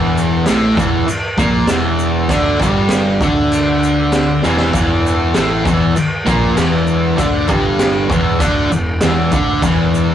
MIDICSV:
0, 0, Header, 1, 6, 480
1, 0, Start_track
1, 0, Key_signature, 1, "minor"
1, 0, Tempo, 609756
1, 1814, Time_signature, 4, 2, 24, 8
1, 7988, End_track
2, 0, Start_track
2, 0, Title_t, "Distorted electric guitar"
2, 0, Program_c, 0, 30
2, 0, Note_on_c, 0, 40, 99
2, 0, Note_on_c, 0, 52, 94
2, 368, Note_off_c, 0, 40, 0
2, 370, Note_off_c, 0, 52, 0
2, 373, Note_on_c, 0, 45, 93
2, 376, Note_on_c, 0, 57, 109
2, 596, Note_on_c, 0, 40, 91
2, 605, Note_on_c, 0, 52, 96
2, 607, Note_off_c, 0, 45, 0
2, 608, Note_off_c, 0, 57, 0
2, 838, Note_off_c, 0, 40, 0
2, 843, Note_off_c, 0, 52, 0
2, 1083, Note_on_c, 0, 46, 110
2, 1090, Note_on_c, 0, 58, 115
2, 1321, Note_off_c, 0, 46, 0
2, 1325, Note_off_c, 0, 58, 0
2, 1332, Note_on_c, 0, 40, 91
2, 1337, Note_on_c, 0, 52, 100
2, 1802, Note_on_c, 0, 50, 88
2, 1805, Note_off_c, 0, 40, 0
2, 1808, Note_off_c, 0, 52, 0
2, 1814, Note_on_c, 0, 62, 100
2, 2040, Note_off_c, 0, 50, 0
2, 2046, Note_off_c, 0, 62, 0
2, 2048, Note_on_c, 0, 43, 87
2, 2054, Note_on_c, 0, 55, 95
2, 2523, Note_off_c, 0, 43, 0
2, 2526, Note_off_c, 0, 55, 0
2, 2537, Note_on_c, 0, 50, 103
2, 2540, Note_on_c, 0, 62, 102
2, 3488, Note_off_c, 0, 50, 0
2, 3489, Note_off_c, 0, 62, 0
2, 3495, Note_on_c, 0, 40, 87
2, 3501, Note_on_c, 0, 52, 107
2, 3715, Note_off_c, 0, 40, 0
2, 3723, Note_off_c, 0, 52, 0
2, 3725, Note_on_c, 0, 40, 89
2, 3732, Note_on_c, 0, 52, 97
2, 4201, Note_on_c, 0, 45, 96
2, 4202, Note_off_c, 0, 40, 0
2, 4205, Note_off_c, 0, 52, 0
2, 4210, Note_on_c, 0, 57, 93
2, 4438, Note_on_c, 0, 40, 91
2, 4440, Note_off_c, 0, 45, 0
2, 4444, Note_off_c, 0, 57, 0
2, 4454, Note_on_c, 0, 52, 98
2, 4678, Note_off_c, 0, 40, 0
2, 4686, Note_off_c, 0, 52, 0
2, 4925, Note_on_c, 0, 46, 96
2, 4931, Note_on_c, 0, 58, 119
2, 5162, Note_off_c, 0, 46, 0
2, 5164, Note_on_c, 0, 40, 93
2, 5165, Note_off_c, 0, 58, 0
2, 5174, Note_on_c, 0, 52, 118
2, 5632, Note_on_c, 0, 50, 91
2, 5640, Note_on_c, 0, 62, 110
2, 5643, Note_off_c, 0, 40, 0
2, 5647, Note_off_c, 0, 52, 0
2, 5876, Note_off_c, 0, 50, 0
2, 5880, Note_off_c, 0, 62, 0
2, 5881, Note_on_c, 0, 43, 91
2, 5887, Note_on_c, 0, 55, 104
2, 6362, Note_off_c, 0, 43, 0
2, 6365, Note_off_c, 0, 55, 0
2, 6372, Note_on_c, 0, 40, 87
2, 6377, Note_on_c, 0, 52, 92
2, 6605, Note_on_c, 0, 50, 98
2, 6607, Note_off_c, 0, 40, 0
2, 6610, Note_off_c, 0, 52, 0
2, 6614, Note_on_c, 0, 62, 105
2, 6844, Note_off_c, 0, 50, 0
2, 6848, Note_off_c, 0, 62, 0
2, 6857, Note_on_c, 0, 40, 79
2, 7049, Note_off_c, 0, 40, 0
2, 7103, Note_on_c, 0, 40, 99
2, 7108, Note_on_c, 0, 52, 114
2, 7334, Note_off_c, 0, 40, 0
2, 7335, Note_on_c, 0, 50, 83
2, 7336, Note_off_c, 0, 52, 0
2, 7347, Note_on_c, 0, 62, 110
2, 7570, Note_off_c, 0, 50, 0
2, 7576, Note_off_c, 0, 62, 0
2, 7582, Note_on_c, 0, 40, 103
2, 7587, Note_on_c, 0, 52, 106
2, 7988, Note_off_c, 0, 40, 0
2, 7988, Note_off_c, 0, 52, 0
2, 7988, End_track
3, 0, Start_track
3, 0, Title_t, "Picked electric bass"
3, 0, Program_c, 1, 34
3, 0, Note_on_c, 1, 28, 101
3, 340, Note_off_c, 1, 28, 0
3, 378, Note_on_c, 1, 33, 98
3, 598, Note_off_c, 1, 33, 0
3, 603, Note_on_c, 1, 28, 100
3, 832, Note_off_c, 1, 28, 0
3, 1081, Note_on_c, 1, 34, 98
3, 1310, Note_off_c, 1, 34, 0
3, 1329, Note_on_c, 1, 28, 100
3, 1780, Note_off_c, 1, 28, 0
3, 1801, Note_on_c, 1, 38, 98
3, 2030, Note_off_c, 1, 38, 0
3, 2044, Note_on_c, 1, 31, 102
3, 2497, Note_off_c, 1, 31, 0
3, 2520, Note_on_c, 1, 38, 99
3, 3455, Note_off_c, 1, 38, 0
3, 3497, Note_on_c, 1, 28, 99
3, 3718, Note_off_c, 1, 28, 0
3, 3723, Note_on_c, 1, 28, 102
3, 4177, Note_off_c, 1, 28, 0
3, 4218, Note_on_c, 1, 33, 100
3, 4439, Note_off_c, 1, 33, 0
3, 4447, Note_on_c, 1, 28, 98
3, 4673, Note_off_c, 1, 28, 0
3, 4928, Note_on_c, 1, 34, 102
3, 5154, Note_off_c, 1, 34, 0
3, 5165, Note_on_c, 1, 28, 93
3, 5619, Note_off_c, 1, 28, 0
3, 5649, Note_on_c, 1, 38, 96
3, 5875, Note_off_c, 1, 38, 0
3, 5894, Note_on_c, 1, 31, 99
3, 6344, Note_off_c, 1, 31, 0
3, 6369, Note_on_c, 1, 28, 100
3, 6596, Note_off_c, 1, 28, 0
3, 6610, Note_on_c, 1, 38, 100
3, 6837, Note_off_c, 1, 38, 0
3, 6851, Note_on_c, 1, 28, 97
3, 7078, Note_off_c, 1, 28, 0
3, 7096, Note_on_c, 1, 28, 92
3, 7320, Note_off_c, 1, 28, 0
3, 7333, Note_on_c, 1, 38, 99
3, 7559, Note_off_c, 1, 38, 0
3, 7572, Note_on_c, 1, 28, 107
3, 7988, Note_off_c, 1, 28, 0
3, 7988, End_track
4, 0, Start_track
4, 0, Title_t, "Muted distorted electric guitar strokes"
4, 846, Note_on_c, 9, 29, 56
4, 925, Note_off_c, 9, 29, 0
4, 4693, Note_on_c, 9, 29, 62
4, 4772, Note_off_c, 9, 29, 0
4, 7988, End_track
5, 0, Start_track
5, 0, Title_t, "Muted picked electric bass strokes"
5, 857, Note_on_c, 9, 29, 44
5, 936, Note_off_c, 9, 29, 0
5, 4700, Note_on_c, 9, 29, 42
5, 4779, Note_off_c, 9, 29, 0
5, 7988, End_track
6, 0, Start_track
6, 0, Title_t, "Drums"
6, 137, Note_on_c, 9, 82, 84
6, 216, Note_off_c, 9, 82, 0
6, 361, Note_on_c, 9, 38, 120
6, 362, Note_on_c, 9, 49, 65
6, 373, Note_on_c, 9, 82, 108
6, 440, Note_off_c, 9, 38, 0
6, 441, Note_off_c, 9, 49, 0
6, 452, Note_off_c, 9, 82, 0
6, 609, Note_on_c, 9, 36, 102
6, 622, Note_on_c, 9, 82, 83
6, 687, Note_off_c, 9, 36, 0
6, 700, Note_off_c, 9, 82, 0
6, 848, Note_on_c, 9, 49, 66
6, 857, Note_on_c, 9, 82, 109
6, 927, Note_off_c, 9, 49, 0
6, 936, Note_off_c, 9, 82, 0
6, 1084, Note_on_c, 9, 36, 115
6, 1095, Note_on_c, 9, 82, 90
6, 1162, Note_off_c, 9, 36, 0
6, 1174, Note_off_c, 9, 82, 0
6, 1317, Note_on_c, 9, 38, 106
6, 1318, Note_on_c, 9, 49, 58
6, 1326, Note_on_c, 9, 82, 109
6, 1396, Note_off_c, 9, 38, 0
6, 1396, Note_off_c, 9, 49, 0
6, 1405, Note_off_c, 9, 82, 0
6, 1568, Note_on_c, 9, 82, 87
6, 1647, Note_off_c, 9, 82, 0
6, 1803, Note_on_c, 9, 49, 63
6, 1805, Note_on_c, 9, 36, 98
6, 1818, Note_on_c, 9, 82, 102
6, 1882, Note_off_c, 9, 49, 0
6, 1883, Note_off_c, 9, 36, 0
6, 1896, Note_off_c, 9, 82, 0
6, 2044, Note_on_c, 9, 36, 103
6, 2063, Note_on_c, 9, 82, 79
6, 2123, Note_off_c, 9, 36, 0
6, 2141, Note_off_c, 9, 82, 0
6, 2271, Note_on_c, 9, 38, 111
6, 2272, Note_on_c, 9, 49, 63
6, 2292, Note_on_c, 9, 82, 112
6, 2350, Note_off_c, 9, 38, 0
6, 2351, Note_off_c, 9, 49, 0
6, 2370, Note_off_c, 9, 82, 0
6, 2525, Note_on_c, 9, 36, 105
6, 2533, Note_on_c, 9, 82, 82
6, 2603, Note_off_c, 9, 36, 0
6, 2611, Note_off_c, 9, 82, 0
6, 2768, Note_on_c, 9, 49, 60
6, 2779, Note_on_c, 9, 82, 96
6, 2846, Note_off_c, 9, 49, 0
6, 2857, Note_off_c, 9, 82, 0
6, 3017, Note_on_c, 9, 82, 85
6, 3096, Note_off_c, 9, 82, 0
6, 3244, Note_on_c, 9, 38, 112
6, 3245, Note_on_c, 9, 49, 57
6, 3249, Note_on_c, 9, 82, 93
6, 3322, Note_off_c, 9, 38, 0
6, 3323, Note_off_c, 9, 49, 0
6, 3327, Note_off_c, 9, 82, 0
6, 3482, Note_on_c, 9, 38, 68
6, 3498, Note_on_c, 9, 82, 74
6, 3561, Note_off_c, 9, 38, 0
6, 3577, Note_off_c, 9, 82, 0
6, 3602, Note_on_c, 9, 38, 92
6, 3680, Note_off_c, 9, 38, 0
6, 3727, Note_on_c, 9, 36, 100
6, 3727, Note_on_c, 9, 49, 55
6, 3739, Note_on_c, 9, 82, 90
6, 3806, Note_off_c, 9, 36, 0
6, 3806, Note_off_c, 9, 49, 0
6, 3817, Note_off_c, 9, 82, 0
6, 3987, Note_on_c, 9, 82, 78
6, 4066, Note_off_c, 9, 82, 0
6, 4206, Note_on_c, 9, 38, 121
6, 4207, Note_on_c, 9, 49, 61
6, 4218, Note_on_c, 9, 82, 89
6, 4285, Note_off_c, 9, 38, 0
6, 4286, Note_off_c, 9, 49, 0
6, 4297, Note_off_c, 9, 82, 0
6, 4452, Note_on_c, 9, 36, 105
6, 4462, Note_on_c, 9, 82, 76
6, 4530, Note_off_c, 9, 36, 0
6, 4541, Note_off_c, 9, 82, 0
6, 4694, Note_on_c, 9, 82, 83
6, 4699, Note_on_c, 9, 49, 62
6, 4772, Note_off_c, 9, 82, 0
6, 4778, Note_off_c, 9, 49, 0
6, 4933, Note_on_c, 9, 36, 108
6, 4937, Note_on_c, 9, 82, 76
6, 5012, Note_off_c, 9, 36, 0
6, 5015, Note_off_c, 9, 82, 0
6, 5171, Note_on_c, 9, 38, 112
6, 5172, Note_on_c, 9, 49, 64
6, 5174, Note_on_c, 9, 82, 83
6, 5250, Note_off_c, 9, 38, 0
6, 5251, Note_off_c, 9, 49, 0
6, 5253, Note_off_c, 9, 82, 0
6, 5409, Note_on_c, 9, 82, 66
6, 5488, Note_off_c, 9, 82, 0
6, 5654, Note_on_c, 9, 36, 93
6, 5655, Note_on_c, 9, 49, 62
6, 5658, Note_on_c, 9, 82, 82
6, 5733, Note_off_c, 9, 36, 0
6, 5733, Note_off_c, 9, 49, 0
6, 5737, Note_off_c, 9, 82, 0
6, 5887, Note_on_c, 9, 82, 75
6, 5895, Note_on_c, 9, 36, 118
6, 5966, Note_off_c, 9, 82, 0
6, 5974, Note_off_c, 9, 36, 0
6, 6134, Note_on_c, 9, 38, 112
6, 6134, Note_on_c, 9, 49, 68
6, 6140, Note_on_c, 9, 82, 93
6, 6212, Note_off_c, 9, 38, 0
6, 6213, Note_off_c, 9, 49, 0
6, 6219, Note_off_c, 9, 82, 0
6, 6374, Note_on_c, 9, 36, 107
6, 6389, Note_on_c, 9, 82, 74
6, 6453, Note_off_c, 9, 36, 0
6, 6468, Note_off_c, 9, 82, 0
6, 6614, Note_on_c, 9, 36, 106
6, 6614, Note_on_c, 9, 49, 62
6, 6619, Note_on_c, 9, 82, 99
6, 6693, Note_off_c, 9, 36, 0
6, 6693, Note_off_c, 9, 49, 0
6, 6698, Note_off_c, 9, 82, 0
6, 6863, Note_on_c, 9, 82, 80
6, 6942, Note_off_c, 9, 82, 0
6, 7090, Note_on_c, 9, 38, 109
6, 7091, Note_on_c, 9, 49, 59
6, 7095, Note_on_c, 9, 82, 99
6, 7169, Note_off_c, 9, 38, 0
6, 7169, Note_off_c, 9, 49, 0
6, 7174, Note_off_c, 9, 82, 0
6, 7335, Note_on_c, 9, 82, 84
6, 7336, Note_on_c, 9, 36, 113
6, 7413, Note_off_c, 9, 82, 0
6, 7414, Note_off_c, 9, 36, 0
6, 7575, Note_on_c, 9, 49, 55
6, 7576, Note_on_c, 9, 36, 99
6, 7580, Note_on_c, 9, 82, 104
6, 7654, Note_off_c, 9, 36, 0
6, 7654, Note_off_c, 9, 49, 0
6, 7659, Note_off_c, 9, 82, 0
6, 7829, Note_on_c, 9, 82, 86
6, 7908, Note_off_c, 9, 82, 0
6, 7988, End_track
0, 0, End_of_file